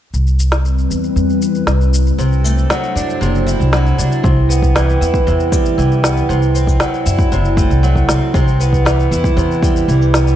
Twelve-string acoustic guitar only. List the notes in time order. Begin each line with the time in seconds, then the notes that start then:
2.18 C3
2.44 A3
2.70 F#3
2.96 D4
3.21 C3
3.47 E4
3.73 F#3
3.98 D4
4.23 C3
4.49 B3
4.75 E3
5.01 E4
5.27 C3
5.52 G3
5.78 E3
6.03 B3
6.29 C3
6.55 C4
6.80 F#3
7.06 E4
7.32 C3
7.57 A3
7.83 F#3
8.09 C4
8.34 C3
8.60 B3
8.85 E3
9.12 E4
9.37 C3
9.63 G3
9.88 E3
10.14 B3